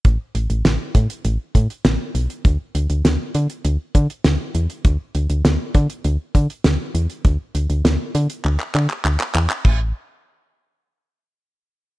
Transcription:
<<
  \new Staff \with { instrumentName = "FM bass" } { \clef bass \time 4/4 \key d \mixolydian \tempo 4 = 100 a,,16 r16 a,,16 a,,16 a,,16 r16 a,16 r16 a,,16 r16 a,16 r16 a,,16 r16 b,,16 r16 | d,16 r16 d,16 d,16 d,16 r16 d16 r16 d,16 r16 d16 r16 d,16 r16 e,16 r16 | d,16 r16 d,16 d,16 d,16 r16 d16 r16 d,16 r16 d16 r16 d,16 r16 e,16 r16 | d,16 r16 d,16 d,16 d,16 r16 d16 r16 d,16 r16 d16 r16 d,16 r16 e,16 r16 |
a,,8 r2. r8 | }
  \new DrumStaff \with { instrumentName = "Drums" } \drummode { \time 4/4 <hh bd>8 hh16 hh16 <hh sn>8 <hh bd>16 hh16 hh8 <hh bd>16 hh16 <hh sn>8 hh16 hh16 | <hh bd>8 hh16 hh16 <hh sn>8 hh16 hh16 hh8 <hh bd>16 hh16 <hh sn>8 hh16 hh16 | <hh bd>8 hh16 hh16 <hh sn>8 <hh bd>16 hh16 hh8 <hh bd>16 hh16 <hh sn>8 hh16 hh16 | <hh bd>8 hh16 hh16 <hh sn>8 hh16 hh16 hc16 hc16 hc16 hc16 hc16 hc16 hc16 hc16 |
<cymc bd>4 r4 r4 r4 | }
>>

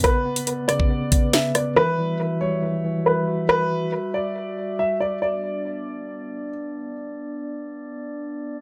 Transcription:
<<
  \new Staff \with { instrumentName = "Grand piano" } { \time 4/4 \key b \minor \tempo 4 = 139 b'4 r8 d''4. e''8 d''8 | b'4 r8 cis''4. b'4 | b'4 r8 d''4. e''8 d''8 | d''2. r4 |
r1 | }
  \new Staff \with { instrumentName = "Glass harmonica" } { \time 4/4 \key b \minor <b b' d''>1 | <g fis' e''>1~ | <g fis' e''>1 | <b d' d''>1~ |
<b d' d''>1 | }
  \new Staff \with { instrumentName = "Tine electric piano" } { \time 4/4 \key b \minor <b b'>8 b8 b8 cis8 b8 b4 b'8 | e8 e8 e8 g8 e8 e4 fis'8~ | fis'2 r2 | r1 |
r1 | }
  \new DrumStaff \with { instrumentName = "Drums" } \drummode { \time 4/4 <hh bd>8. hh16 hh8 <hh ss>16 bd16 r8 <hh bd>8 <hh sn>8 <hh ss>8 | r4 r4 r4 r4 | r4 r4 r4 r4 | r4 r4 r4 r4 |
r4 r4 r4 r4 | }
>>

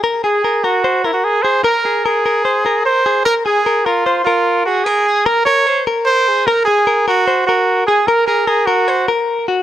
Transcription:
<<
  \new Staff \with { instrumentName = "Clean electric guitar" } { \time 4/4 \key aes \mixolydian \tempo 4 = 150 bes'8 aes'8 bes'8 bes'8 c''8 bes'4 aes'8 | bes'8 aes'8 bes'8 bes'8 c''8 bes'4 aes'8 | bes'8 aes'8 bes'8 bes'8 c''8 bes'4 aes'8 | bes'8 aes'8 bes'8 bes'8 c''8 bes'4 aes'8 |
bes'8 aes'8 bes'8 bes'8 c''8 bes'4 aes'8 | bes'8 aes'8 bes'8 bes'8 c''8 bes'4 ges'8 | }
  \new Staff \with { instrumentName = "Trumpet" } { \time 4/4 \key aes \mixolydian r8 aes'4 ges'4 fes'16 ges'16 aes'8 c''8 | bes'4 aes'2 c''4 | bes'8 aes'4 f'4 f'4 ges'8 | aes'4 bes'8 des''4 r8 c''4 |
bes'8 aes'4 ges'4 ges'4 aes'8 | bes'8 bes'8 aes'8 ges'4 r4. | }
>>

